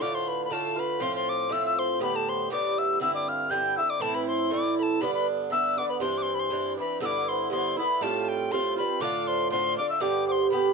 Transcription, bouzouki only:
0.00 0.48 A2 medium
0.00 0.50 D3 medium
0.00 0.51 A3 medium
0.00 0.52 F4 medium
0.50 0.77 A2 medium
0.50 0.78 D3 medium
0.50 0.76 A3 medium
0.50 0.75 F4 medium
0.76 1.00 D3 soft
0.76 1.01 A3 soft
0.76 1.00 F4 soft
0.99 1.48 A2 medium
0.99 1.49 F3 medium
0.99 1.50 C4 medium
0.99 1.51 F4 medium
1.49 1.98 A2 medium
1.49 2.00 F3 medium
1.49 2.01 C4 medium
1.49 2.01 F4 medium
1.99 2.49 A2 medium
1.99 2.50 D3 medium
1.99 2.51 B3 medium
1.99 2.51 G4 medium
2.50 2.99 A2 medium
2.50 3.00 D3 medium
2.50 3.01 B3 medium
2.50 3.01 G4 medium
3.00 3.49 G2 medium
3.00 3.50 D3 medium
3.00 3.51 C4 medium
3.00 3.51 E4 medium
3.50 3.77 G2 medium
3.50 3.78 D3 medium
3.50 3.78 C4 medium
3.50 3.76 E4 medium
3.77 4.01 D3 soft
3.77 4.01 C4 soft
3.77 4.01 E4 soft
4.00 4.49 A2 medium
4.00 4.50 E3 medium
4.00 4.51 C4 medium
4.00 4.52 E4 medium
4.51 5.00 A2 medium
4.51 5.01 E3 medium
4.51 5.02 C4 medium
4.51 5.02 E4 medium
5.01 5.49 G2 medium
5.01 5.50 D3 medium
5.01 5.51 B3 medium
5.01 5.53 D4 medium
5.50 5.77 G2 medium
5.50 5.78 D3 medium
5.50 5.78 B3 medium
5.50 5.76 D4 medium
5.77 6.01 D3 soft
5.77 6.01 B3 soft
5.77 6.01 D4 soft
6.00 6.49 G2 medium
6.00 6.50 E3 medium
6.00 6.51 C4 medium
6.00 6.52 D4 medium
6.50 6.77 G2 medium
6.50 6.78 E3 medium
6.50 6.78 C4 medium
6.50 6.76 D4 medium
6.78 7.01 E3 soft
6.78 7.02 C4 soft
6.78 7.01 D4 soft
7.00 7.49 G2 medium
7.00 7.50 D3 medium
7.00 7.51 B3 medium
7.00 7.52 E4 medium
7.50 7.77 G2 medium
7.50 7.78 D3 medium
7.50 7.78 B3 medium
7.50 7.76 E4 medium
7.77 8.02 D3 soft
7.77 8.02 B3 soft
7.77 8.01 E4 soft
8.01 8.50 A2 medium
8.01 8.51 G3 medium
8.01 8.52 C4 medium
8.01 8.52 F4 medium
8.51 8.78 A2 medium
8.51 8.78 G3 medium
8.51 8.77 C4 medium
8.51 8.76 F4 medium
8.77 9.01 G3 soft
8.77 9.01 C4 soft
8.77 9.01 F4 medium
9.00 9.49 A2 medium
9.00 9.52 D3 medium
9.00 9.52 D4 medium
9.00 9.52 F4 medium
9.50 9.78 A2 medium
9.50 9.78 D3 medium
9.50 9.78 D4 medium
9.50 9.76 F4 medium
9.78 10.00 D3 soft
9.78 10.01 D4 soft
9.78 10.01 F4 soft
10.00 10.49 G2 medium
10.00 10.51 D3 medium
10.00 10.51 B3 medium
10.00 10.53 G4 medium
10.50 10.73 G2 medium
10.50 10.73 D3 medium
10.50 10.73 B3 medium
10.50 10.73 G4 medium

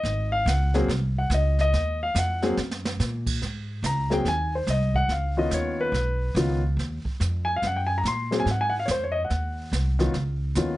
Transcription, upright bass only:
0.03 0.45 G#1 medium
0.46 0.87 C#2 medium
0.88 1.29 C2 medium
1.30 1.71 C#2 loud
1.73 2.14 D#2 medium
2.15 2.56 F2 medium
2.57 2.98 F#2 medium
3.00 3.40 A#2 medium
3.42 3.82 G#2 medium
3.83 4.24 C#2 medium
4.25 4.66 D#2 medium
4.67 5.08 C2 medium
5.08 5.50 C#2 medium
5.51 5.91 D#2 medium
5.92 6.34 B1 medium
6.35 6.76 C#2 medium
6.77 7.03 D#2 medium
7.05 muted upright bass stroke soft
7.20 7.61 F2 medium
7.62 8.03 F#2 medium
8.04 8.45 A#2 medium
8.45 8.87 G#2 medium
8.88 9.29 F2 medium
9.30 9.71 D#2 medium
9.72 10.13 C2 medium
10.14 10.55 C#2 medium
10.55 10.77 D#2 medium

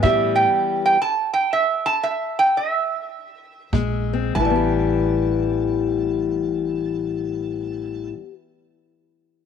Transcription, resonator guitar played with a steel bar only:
0.03 0.36 E5 medium
0.36 0.84 G5 medium
0.86 1.01 G5 loud
1.02 1.33 A5 loud
1.33 1.52 G5 medium
1.53 1.87 E5 medium
1.86 2.04 A5 loud
2.03 2.36 E5 loud
2.39 2.58 G5 medium
2.57 4.09 E5 medium
4.35 8.09 A5 medium

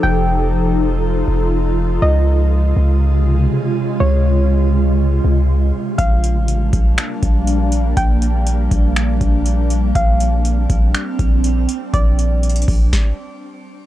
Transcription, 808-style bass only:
0.04 1.24 F1 loud
1.28 1.99 F1 loud
2.02 2.73 C#2 loud
2.76 3.48 C#2 loud
4.00 5.20 C#2 loud
5.24 5.72 C#2 loud
5.99 6.37 A#1 loud
6.36 6.71 A1 loud
6.73 6.97 A#1 loud
7.23 7.94 A#1 loud
7.97 8.68 A#1 loud
8.71 9.19 A#1 loud
9.21 9.92 A#1 loud
9.95 10.67 A#1 loud
10.70 10.94 A#1 loud
11.19 11.67 A#1 loud
11.94 12.65 A#1 loud
12.68 12.92 A#1 loud

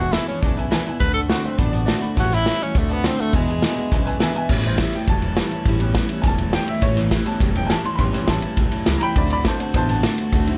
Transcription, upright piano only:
0.01 0.09 E5 medium
0.01 0.09 G#5 medium
0.13 0.22 B4 medium
0.13 0.22 E5 medium
0.13 0.23 G#5 medium
0.28 0.37 B4 medium
0.28 0.37 E5 medium
0.28 0.37 B5 medium
0.43 0.51 B4 medium
0.43 0.52 E5 medium
0.43 0.52 G#5 medium
0.57 0.66 B4 medium
0.57 0.66 E5 medium
0.57 0.67 G#5 loud
0.71 0.80 B4 loud
0.71 0.80 E5 loud
0.71 0.81 G#5 loud
0.86 0.95 B4 medium
0.86 0.95 E5 medium
0.86 0.96 G#5 loud
1.01 1.10 D5 medium
1.01 1.10 F#5 medium
1.01 1.10 A5 loud
1.15 1.24 D5 medium
1.15 1.24 F#5 medium
1.15 1.25 A5 medium
1.30 1.38 D5 medium
1.30 1.39 F#5 medium
1.30 1.39 A5 medium
1.44 1.53 D5 medium
1.44 1.53 F#5 medium
1.44 1.54 A5 medium
1.57 1.67 D5 medium
1.57 1.67 F#5 medium
1.57 1.68 B5 medium
1.72 1.81 D5 loud
1.72 1.82 F#5 medium
1.72 1.82 A5 loud
1.86 1.96 D5 loud
1.86 1.96 F#5 loud
1.86 1.97 A5 loud
2.00 2.10 D5 medium
2.00 2.11 F#5 medium
2.00 2.11 B5 loud
2.16 2.25 C#5 medium
2.16 2.26 E5 medium
2.16 2.26 A5 loud
2.31 2.40 C#5 medium
2.31 2.40 E5 medium
2.31 2.41 G5 medium
2.46 2.55 C#5 medium
2.46 2.56 A5 medium
2.61 2.70 C#5 medium
2.61 2.70 E5 medium
2.61 2.71 G5 medium
2.75 2.84 D5 medium
2.75 2.84 F#5 medium
2.75 2.85 A5 medium
2.89 2.98 D5 medium
2.89 2.99 F#5 medium
2.89 2.99 A5 loud
3.04 3.13 D5 loud
3.04 3.13 F#5 medium
3.04 3.14 A5 loud
3.18 3.27 D5 medium
3.18 3.28 F#5 medium
3.18 3.28 A5 medium
3.33 3.42 B4 medium
3.33 3.42 E5 medium
3.33 3.43 G#5 loud
3.48 3.56 B4 medium
3.48 3.57 E5 medium
3.48 3.57 G#5 medium
3.63 3.71 B4 medium
3.63 3.71 E5 medium
3.63 3.72 G#5 medium
3.76 3.85 B4 medium
3.76 3.86 E5 medium
3.76 3.86 F#5 medium
3.91 4.00 B4 medium
3.91 4.01 E5 medium
3.91 4.01 G#5 medium
4.05 4.15 B4 loud
4.05 4.15 E5 medium
4.05 4.15 G#5 loud
4.20 4.29 B4 loud
4.20 4.29 E5 loud
4.20 4.30 G#5 loud
4.35 4.44 B4 medium
4.35 4.44 E5 medium
4.35 4.44 G#5 loud
4.50 4.91 G3 medium
4.50 4.92 B3 medium
4.50 4.92 C#4 medium
4.67 4.80 C5 medium
4.81 4.94 E5 medium
4.95 5.08 G5 medium
5.09 5.65 A5 loud
5.80 6.22 G3 medium
5.80 6.22 B3 medium
5.80 6.23 C#4 medium
6.22 6.38 G3 soft
6.22 6.38 B3 soft
6.22 6.38 C#4 medium
6.22 6.24 G#5 medium
6.27 6.54 A5 loud
6.54 6.68 G5 loud
6.69 6.83 E5 loud
6.83 6.97 C#5 loud
7.25 7.97 G3 soft
7.25 7.97 B3 soft
7.25 7.98 C#4 medium
7.25 7.55 A5 medium
7.56 7.70 G5 medium
7.67 7.69 G#5 medium
7.71 7.85 A5 loud
7.86 7.99 C6 loud
7.96 8.11 G3 medium
7.96 8.12 B3 soft
7.96 8.12 C#4 medium
7.96 7.98 B5 medium
8.00 8.28 C6 loud
8.13 8.55 G3 medium
8.13 8.55 B3 medium
8.13 8.55 C#4 medium
8.30 8.85 A5 loud
8.98 9.15 G5 loud
8.98 9.00 A#5 medium
9.03 9.16 B5 loud
9.16 9.57 F#3 medium
9.16 9.58 C4 medium
9.16 9.58 E4 medium
9.16 9.30 D5 medium
9.16 9.31 B5 loud
9.32 9.45 D5 medium
9.32 9.46 B5 loud
9.46 9.59 C5 medium
9.46 9.60 A5 medium
9.61 9.73 C5 medium
9.61 9.74 A5 medium
9.75 9.87 F#3 medium
9.75 9.87 C4 soft
9.75 9.88 E4 medium
9.75 9.88 C5 medium
9.75 9.89 A5 loud
9.90 10.46 A5 loud
10.47 10.58 F#3 medium
10.47 10.58 C4 medium
10.47 10.58 E4 medium

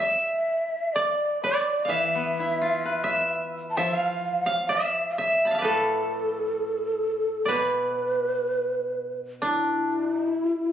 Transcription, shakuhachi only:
0.00 0.95 E5 medium
0.94 1.42 D5 medium
1.44 1.93 D5 medium
1.92 3.46 E5 medium
3.70 3.79 A5 medium
3.77 4.71 F5 medium
4.70 5.09 E5 medium
5.10 5.19 F5 soft
5.17 5.63 E5 medium
5.64 7.54 A4 medium
7.53 9.15 B4 medium
9.44 10.72 E4 medium

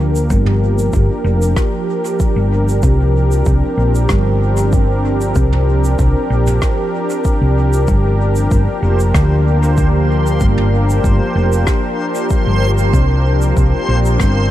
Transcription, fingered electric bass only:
0.00 0.27 D2 loud
0.30 0.91 G1 medium
0.93 1.08 G1 medium
1.24 1.53 F1 loud
2.36 2.80 G1 medium
2.83 3.43 C2 loud
3.46 3.61 C2 medium
3.77 4.06 A#1 medium
4.09 5.33 G1 loud
5.36 5.96 C2 loud
5.99 6.14 C2 medium
6.30 6.58 A#1 medium
7.42 7.85 C2 medium
7.88 8.48 G1 loud
8.51 8.66 G1 medium
8.82 9.11 F1 loud
9.14 10.38 D2 loud
10.41 11.01 G1 loud
11.04 11.19 G1 medium
11.35 11.64 F1 loud
12.47 12.91 G1 medium
12.93 13.54 C2 medium
13.57 13.71 C2 medium
13.89 14.16 A#1 loud
14.20 14.51 G1 loud

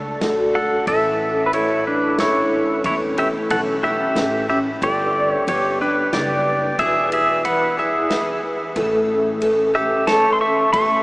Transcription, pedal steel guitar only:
0.00 0.49 A4 medium
0.55 0.86 A4 medium
0.55 0.87 F#5 medium
0.88 1.43 A4 medium
0.88 1.48 E5 loud
1.46 1.53 B4 medium
1.54 1.84 E4 medium
1.54 1.87 C#5 medium
1.87 2.17 D4 medium
1.87 2.20 B4 medium
2.20 2.81 E4 medium
2.20 2.81 C#5 medium
2.86 2.95 E4 medium
2.86 2.95 C#5 medium
3.18 3.27 G4 medium
3.18 3.27 E5 medium
3.51 3.60 A4 medium
3.51 3.60 F#5 loud
3.83 4.45 G4 medium
3.83 4.45 E5 loud
4.50 4.58 G4 medium
4.50 4.58 E5 medium
4.83 5.44 G4 medium
4.83 5.30 D5 loud
5.30 5.48 C#5 loud
5.48 5.78 G4 medium
5.48 5.79 C#5 medium
5.81 6.11 D4 medium
5.81 6.15 B4 medium
6.13 6.75 G4 medium
6.13 6.81 D5 medium
6.79 7.10 G#4 medium
6.79 7.12 E5 loud
7.13 7.43 G#4 medium
7.13 7.44 E5 loud
7.45 7.75 B4 medium
7.45 7.79 F#5 medium
7.79 8.40 G#4 medium
7.79 8.40 E5 medium
9.75 10.06 G4 medium
9.75 10.05 E5 medium
10.07 10.32 C#5 medium
10.07 10.32 A5 loud
10.33 10.40 C6 medium
10.41 10.72 E5 medium
10.41 10.71 C#6 medium
10.73 11.03 E5 medium
10.73 11.03 C#6 loud

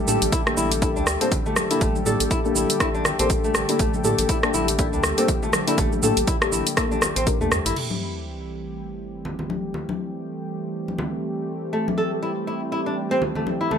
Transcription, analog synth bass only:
0.08 0.17 A2 medium
0.22 0.29 A1 loud
0.57 0.98 A1 medium
0.96 1.03 D2 loud
1.07 1.16 D2 medium
1.81 1.91 A1 loud
2.06 2.16 A2 medium
2.20 2.27 A1 loud
2.56 2.65 A1 medium
3.19 3.49 A1 loud
3.55 3.64 A1 medium
3.79 3.89 A1 loud
4.04 4.14 A2 medium
4.19 4.26 A1 loud
4.54 4.94 A1 medium
4.93 5.00 D2 loud
5.03 5.13 D2 medium
5.78 5.87 A1 loud
6.03 6.12 A2 medium
6.17 6.24 A1 loud
6.52 6.62 A1 medium
7.16 7.40 A1 loud
7.41 7.48 E2 medium
7.51 7.61 E2 medium
7.66 7.73 A1 medium

